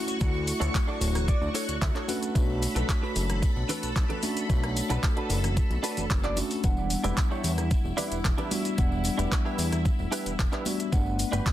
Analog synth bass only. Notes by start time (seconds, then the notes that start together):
0.21 D2
0.61 D2
1.01 D1
1.41 D2
1.68 D2
1.82 D2
2.35 B1
2.76 B1
3.16 F#1
3.56 B1
3.83 B1
3.96 B1
4.50 B1
4.90 B1
5.30 F#1
5.70 B1
5.97 F#1
6.10 F#1
6.64 E1
7.04 E1
7.44 E2
7.71 E1
7.84 E1
8.11 E1
8.25 E1
8.78 E1
9.19 E1
9.58 E2
9.99 E1
10.26 E1
10.39 E1
10.92 G1
11.33 G1